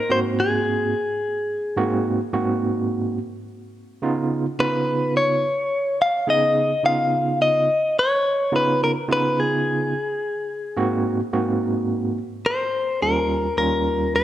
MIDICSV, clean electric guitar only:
0, 0, Header, 1, 2, 480
1, 0, Start_track
1, 0, Tempo, 562324
1, 1520, Time_signature, 4, 2, 24, 8
1, 12153, End_track
2, 0, Start_track
2, 0, Title_t, "Clean electric guitar"
2, 0, Program_c, 0, 27
2, 0, Note_on_c, 0, 70, 86
2, 99, Note_on_c, 0, 72, 89
2, 101, Note_off_c, 0, 70, 0
2, 161, Note_off_c, 0, 72, 0
2, 340, Note_on_c, 0, 68, 70
2, 1735, Note_off_c, 0, 68, 0
2, 3928, Note_on_c, 0, 71, 91
2, 4409, Note_off_c, 0, 71, 0
2, 4412, Note_on_c, 0, 73, 80
2, 5133, Note_off_c, 0, 73, 0
2, 5136, Note_on_c, 0, 77, 82
2, 5374, Note_off_c, 0, 77, 0
2, 5378, Note_on_c, 0, 75, 87
2, 5850, Note_off_c, 0, 75, 0
2, 5854, Note_on_c, 0, 77, 99
2, 6329, Note_off_c, 0, 77, 0
2, 6332, Note_on_c, 0, 75, 89
2, 6818, Note_off_c, 0, 75, 0
2, 6821, Note_on_c, 0, 73, 93
2, 7302, Note_off_c, 0, 73, 0
2, 7305, Note_on_c, 0, 71, 81
2, 7516, Note_off_c, 0, 71, 0
2, 7543, Note_on_c, 0, 70, 83
2, 7605, Note_off_c, 0, 70, 0
2, 7789, Note_on_c, 0, 71, 84
2, 8020, Note_off_c, 0, 71, 0
2, 8021, Note_on_c, 0, 68, 70
2, 9416, Note_off_c, 0, 68, 0
2, 10636, Note_on_c, 0, 72, 80
2, 11114, Note_off_c, 0, 72, 0
2, 11118, Note_on_c, 0, 70, 75
2, 11581, Note_off_c, 0, 70, 0
2, 11591, Note_on_c, 0, 70, 78
2, 12081, Note_off_c, 0, 70, 0
2, 12084, Note_on_c, 0, 72, 82
2, 12153, Note_off_c, 0, 72, 0
2, 12153, End_track
0, 0, End_of_file